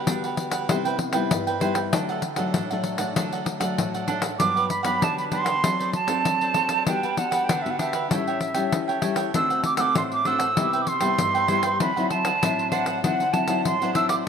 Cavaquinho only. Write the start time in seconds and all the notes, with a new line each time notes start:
0.07 D4 G4 B4 F#5
0.24 G4 B4 F#5
0.51 G4 B4 F#5
0.69 E4 B4 C5 G5
0.85 B4 C5 G5
0.98 muted cavaquinho stroke
1.13 B4 C5 G5
1.47 B4 C5 G5
1.60 E4 B4 C5 G5
1.74 B4 C5 G5
1.92 D4 A4 D5 F#5
2.09 A4 D5 F#5
2.23 muted cavaquinho stroke
2.37 A4 D5 F#5
2.54 D4 A4 D5 F#5
2.70 A4 D5 F#5
2.98 A4 D5 F#5
3.16 D4 A4 D5 F#5
3.32 A4 D5 F#5
3.46 muted cavaquinho stroke
3.60 A4 D5 F#5
3.94 A4 D5 F#5
4.07 D4 A4 D5 F#5
4.22 A4 D5 F#5
4.40 D4 G4 B4 F#5
4.56 G4 B4 F#5
4.69 muted cavaquinho stroke
4.83 G4 B4 F#5
5.01 D4 G4 B4 F#5
5.31 D4 G4 B4 F#5
5.45 G4 B4 F#5
5.63 F#4 A4 C5 D5
5.79 A4 C5 D5
5.93 muted cavaquinho stroke
6.07 A4 C5 D5
6.42 A4 C5 D5
6.55 F#4 A4 C5 D5
6.69 A4 C5 D5
6.87 D4 G4 B4 F#5
7.03 G4 B4 F#5
7.17 muted cavaquinho stroke
7.31 G4 B4 F#5
7.49 D4 G4 B4 F#5
7.79 D4 G4 B4 F#5
7.93 G4 B4 F#5
8.11 G4 A4 C#5 G5
8.27 A4 C#5 G5
8.41 muted cavaquinho stroke
8.54 A4 C#5 G5
8.88 A4 C#5 G5
9.02 G4 A4 C#5 G5
9.16 A4 C#5 G5
9.34 D4 A4 C5 F#5
9.50 A4 C5 F#5
9.64 muted cavaquinho stroke
9.78 A4 C5 F#5
9.96 D4 A4 C5 F#5
10.25 D4 A4 C5 F#5
10.39 A4 C5 F#5
10.57 E4 B4 C5 G5
10.73 B4 C5 G5
10.87 muted cavaquinho stroke
11.01 B4 C5 G5
11.35 B4 C5 G5
11.48 E4 B4 C5 G5
11.62 B4 C5 G5
11.80 D4 C5 D5 F#5
11.96 C5 D5 F#5
12.10 muted cavaquinho stroke
12.24 C5 D5 F#5
12.42 D4 C5 D5 F#5
12.71 D4 C5 D5 F#5
12.86 C5 D5 F#5
13.04 D4 C5 D5 F#5
13.20 C5 D5 F#5
13.34 muted cavaquinho stroke
13.48 C5 D5 F#5
13.82 C5 D5 F#5
13.95 D4 C5 D5 F#5
14.09 C5 D5 F#5